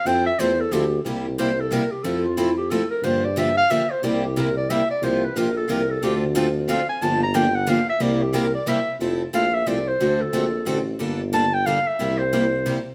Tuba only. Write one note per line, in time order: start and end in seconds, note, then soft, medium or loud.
0.05 0.32 F2 loud
0.38 0.67 E2 medium
0.72 1.00 D2 loud
1.04 1.84 C2 medium
2.04 2.84 F2 medium
3.02 3.62 G2 medium
4.03 4.82 C2 loud
5.02 5.29 C2 medium
5.35 5.64 A#1 medium
5.68 5.97 C2 medium
6.02 6.81 D2 loud
7.01 7.81 G1 medium
8.00 8.60 C2 loud
8.99 9.26 F1 medium
9.34 9.62 A#1 medium
9.67 9.95 C2 medium
10.00 10.27 D2 medium
10.33 10.62 A#1 medium
10.67 10.95 A1 medium
11.00 11.80 G1 medium
11.99 12.79 C2 medium